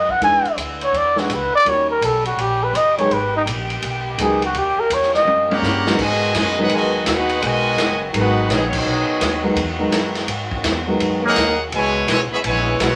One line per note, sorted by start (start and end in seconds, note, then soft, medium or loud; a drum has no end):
0.00 0.20 F#2 medium
0.00 0.20 D#3 medium
0.00 1.63 G#3 medium
0.00 0.20 F#4 medium
0.00 1.63 B4 medium
0.00 0.12 D#5 loud
0.09 0.23 F#5 loud
0.09 kick medium
0.20 0.43 E2 medium
0.20 1.65 D3 medium
0.20 0.43 E3 medium
0.20 0.42 G#3 medium
0.20 0.43 B3 medium
0.20 0.43 D4 medium
0.20 1.65 E4 medium
0.20 0.43 G#4 medium
0.20 0.57 G#5 medium
0.20 ride medium
0.44 muted upright bass stroke soft
0.44 ride soft
0.56 0.92 D2 medium
0.56 hi-hat pedal medium
0.56 ride medium
0.81 0.98 C#5 medium
0.81 ride soft
0.93 1.28 E2 medium
0.93 ride medium
0.97 1.21 D5 loud
1.16 1.28 E3 medium
1.16 1.28 G#3 medium
1.16 1.28 B3 medium
1.16 1.29 D4 medium
1.16 1.29 G#4 medium
1.16 snare soft
1.20 1.36 F#4 medium
1.30 1.52 C#2 medium
1.30 hi-hat pedal medium
1.30 ride medium
1.35 1.55 B4 medium
1.52 1.71 D5 loud
1.52 muted upright bass stroke soft
1.65 2.01 D#2 medium
1.65 1.87 D#3 medium
1.65 5.82 D#3 medium
1.65 1.87 G3 medium
1.65 3.10 G3 medium
1.65 1.87 A#3 medium
1.65 3.09 C#4 medium
1.65 1.88 C#4 medium
1.65 1.88 F#4 medium
1.65 5.82 G4 medium
1.65 1.90 C#5 loud
1.65 ride medium
1.90 2.06 A#4 medium
2.01 2.36 B1 loud
2.01 2.25 A4 medium
2.01 hi-hat pedal medium
2.01 ride medium
2.25 2.42 F#4 medium
2.25 ride soft
2.37 2.73 A#1 medium
2.37 ride medium
2.41 2.65 G4 medium
2.63 2.77 B4 loud
2.74 3.09 F#1 loud
2.74 2.97 D#5 loud
2.74 hi-hat pedal medium
2.74 ride medium
2.98 3.09 D#3 medium
2.98 3.09 F#3 medium
2.98 3.10 G#3 medium
2.98 3.10 B3 medium
2.98 3.10 G#4 medium
2.98 3.14 C#5 loud
2.98 ride medium
3.10 3.45 G#1 medium
3.10 4.53 G#3 medium
3.10 4.53 B3 medium
3.10 3.35 B4 medium
3.10 ride medium
3.36 3.43 D#4 medium
3.46 3.81 A#1 loud
3.46 hi-hat pedal medium
3.46 ride medium
3.70 ride medium
3.82 4.17 B1 medium
3.82 ride medium
4.18 4.53 C#2 loud
4.18 4.40 D#3 medium
4.18 4.40 F#3 medium
4.18 4.40 G#3 medium
4.18 4.40 B3 medium
4.18 4.41 F#4 medium
4.18 4.42 G#4 medium
4.18 hi-hat pedal medium
4.18 ride medium
4.42 4.60 F#4 medium
4.42 ride medium
4.53 4.75 D#2 medium
4.53 5.82 A#3 medium
4.53 5.82 C#4 medium
4.53 ride medium
4.58 4.81 G4 medium
4.77 4.95 A#4 loud
4.77 muted upright bass stroke soft
4.90 5.25 E2 medium
4.90 5.14 C#5 medium
4.90 hi-hat pedal medium
4.90 ride medium
5.03 snare soft
5.14 5.59 D#5 loud
5.14 snare soft
5.25 5.61 F#2 medium
5.25 high tom medium
5.49 5.94 C#3 loud
5.49 5.95 G3 medium
5.49 5.94 A#3 medium
5.49 5.96 G4 loud
5.49 5.96 C#5 loud
5.49 5.96 F#5 loud
5.49 5.96 A#5 loud
5.49 high tom medium
5.62 5.97 G2 loud
5.62 snare medium
5.62 hi-hat pedal medium
5.86 5.97 D#3 medium
5.86 5.97 F#3 medium
5.86 5.98 G#3 medium
5.86 5.98 B3 medium
5.86 5.98 F#4 medium
5.86 snare medium
5.98 6.33 G#2 medium
5.98 6.34 B2 loud
5.98 11.69 D#3 medium
5.98 6.35 D#3 medium
5.98 12.95 F#3 medium
5.98 12.95 G#3 medium
5.98 6.34 G#3 loud
5.98 11.69 F#4 medium
5.98 6.36 F#4 loud
5.98 6.35 B4 loud
5.98 6.35 D#5 medium
5.98 6.36 G#5 loud
5.98 kick medium
5.98 crash medium
6.35 6.69 F#2 loud
6.35 6.56 B2 medium
6.35 6.56 D#3 medium
6.35 6.56 G#3 medium
6.35 6.57 F#4 medium
6.35 6.57 B4 loud
6.35 6.57 D#5 medium
6.35 6.57 G#5 loud
6.35 snare medium
6.35 hi-hat pedal medium
6.35 ride medium
6.58 7.04 D#3 medium
6.58 6.69 D#3 medium
6.58 7.03 F#3 medium
6.58 6.71 F#3 medium
6.58 7.04 G#3 medium
6.58 7.04 B3 medium
6.58 6.71 B3 medium
6.58 7.04 F#4 medium
6.58 6.72 G#4 medium
6.58 6.71 D#5 medium
6.58 6.71 F#5 medium
6.58 6.72 B5 loud
6.69 7.05 E2 medium
6.69 6.99 B2 medium
6.69 6.99 D#3 medium
6.69 6.99 G#3 medium
6.69 7.00 D#5 medium
6.69 7.00 G#5 loud
6.69 ride medium
6.73 7.01 F#4 medium
6.73 7.01 B4 medium
7.04 7.41 D#2 loud
7.04 7.42 B3 medium
7.04 7.41 D#4 medium
7.04 7.42 F#4 medium
7.04 7.07 E5 medium
7.04 snare medium
7.04 hi-hat pedal medium
7.04 ride medium
7.09 7.44 D#4 medium
7.09 7.44 G#4 medium
7.09 7.44 B4 medium
7.09 7.43 F#5 loud
7.29 ride medium
7.42 7.77 B1 medium
7.42 8.01 B2 loud
7.42 8.01 D#3 loud
7.42 8.01 G#3 loud
7.42 8.02 F#4 loud
7.42 8.03 B4 loud
7.42 8.03 D#5 loud
7.42 8.02 G#5 loud
7.42 ride medium
7.77 8.12 F#1 loud
7.77 snare medium
7.77 hi-hat pedal medium
7.77 ride medium
8.13 8.48 G#1 loud
8.13 8.68 D#3 medium
8.13 8.67 F#3 medium
8.13 8.68 G#3 medium
8.13 8.68 B3 medium
8.13 8.48 B3 medium
8.13 8.48 D#4 medium
8.13 8.68 F#4 medium
8.13 8.48 F#4 medium
8.13 8.48 G#4 medium
8.13 8.48 B4 medium
8.13 8.48 F#5 loud
8.13 ride medium
8.49 8.84 A#1 loud
8.49 8.63 F#3 medium
8.49 8.63 B3 medium
8.49 8.64 B3 medium
8.49 8.63 D#4 medium
8.49 8.64 G#4 medium
8.49 8.64 D#5 medium
8.49 snare medium
8.49 hi-hat pedal medium
8.49 ride medium
8.53 8.64 F#4 medium
8.66 8.74 C#5 medium
8.72 9.44 F#3 medium
8.72 9.44 B3 medium
8.72 9.44 D#4 medium
8.72 kick medium
8.72 crash medium
8.76 9.46 B3 medium
8.76 9.46 F#4 medium
8.76 9.46 G#4 medium
8.76 9.47 D#5 medium
8.85 9.07 B1 medium
9.09 muted upright bass stroke soft
9.21 9.55 D#2 loud
9.21 snare medium
9.21 hi-hat pedal medium
9.21 ride medium
9.43 9.55 D#3 medium
9.43 9.55 F#3 medium
9.43 9.55 G#3 medium
9.43 9.56 B3 medium
9.43 9.56 F#4 medium
9.56 9.91 E2 loud
9.56 ride medium
9.78 10.25 D#3 medium
9.78 10.26 F#3 medium
9.78 10.26 G#3 medium
9.78 10.26 B3 medium
9.78 10.26 D#4 medium
9.92 10.27 F#2 loud
9.92 snare medium
9.92 hi-hat pedal medium
9.92 ride medium
10.15 snare soft
10.15 ride medium
10.27 10.63 G#2 medium
10.27 ride medium
10.51 kick medium
10.64 10.99 E2 loud
10.64 snare medium
10.64 hi-hat pedal medium
10.64 ride medium
10.87 11.33 D#3 medium
10.87 11.34 F#3 medium
10.87 11.34 G#3 medium
10.87 11.34 B3 medium
10.87 11.34 F#4 medium
11.00 11.35 F#2 loud
11.00 ride medium
11.22 11.57 D#3 medium
11.22 11.56 F#3 medium
11.22 11.56 A#3 loud
11.22 11.58 G#4 loud
11.22 11.58 D#5 loud
11.22 11.59 F#5 loud
11.22 11.58 A#5 loud
11.36 11.71 D#2 loud
11.36 snare medium
11.36 hi-hat pedal medium
11.36 ride medium
11.72 12.07 C#2 medium
11.72 12.06 B2 loud
11.72 12.95 C#3 medium
11.72 12.06 E3 loud
11.72 12.06 G#3 medium
11.72 12.95 E4 medium
11.72 12.07 E4 medium
11.72 12.07 B4 medium
11.72 12.07 C#5 loud
11.72 12.07 G#5 loud
11.72 ride medium
12.08 12.29 B1 loud
12.08 12.20 B2 medium
12.08 12.20 E3 medium
12.08 12.19 G#3 medium
12.08 12.20 E4 medium
12.08 12.20 B4 medium
12.08 12.20 C#5 medium
12.08 12.20 G#5 loud
12.08 snare medium
12.08 hi-hat pedal medium
12.08 ride medium
12.31 12.39 E3 medium
12.31 12.38 G#3 medium
12.31 12.38 B3 medium
12.31 12.37 G#4 medium
12.31 12.38 C#5 medium
12.31 12.38 E5 medium
12.31 12.37 B5 loud
12.31 muted upright bass stroke soft
12.44 12.78 A#1 loud
12.44 12.78 E3 medium
12.44 12.78 G#3 medium
12.44 12.78 B3 medium
12.44 12.78 E4 medium
12.44 12.78 B4 medium
12.44 12.78 C#5 medium
12.44 12.78 G#5 loud
12.44 ride medium
12.79 12.95 B1 loud
12.79 12.95 G#3 medium
12.79 12.95 B3 medium
12.79 12.95 E4 medium
12.79 12.95 F#4 medium
12.79 12.95 B4 medium
12.79 12.95 C#5 medium
12.79 12.95 F#5 loud
12.79 snare medium
12.79 hi-hat pedal medium
12.79 ride medium